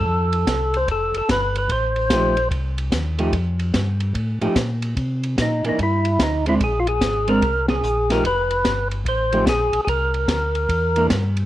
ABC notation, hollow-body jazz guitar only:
X:1
M:4/4
L:1/8
Q:"Swing" 1/4=147
K:Fmix
V:1 name="Hollow-body jazz guitar"
z8 | z2 [F,A,EG] z4 [F,A,EG] | z4 z [F,A,EG] z2 | z3 [=E,B,D] z3 [_A,CD] |
z3 [_A,CD] z3 [F,=A,EG] | z4 z [F,A,EG] z2 | z4 z [=E,B,D] z2 |]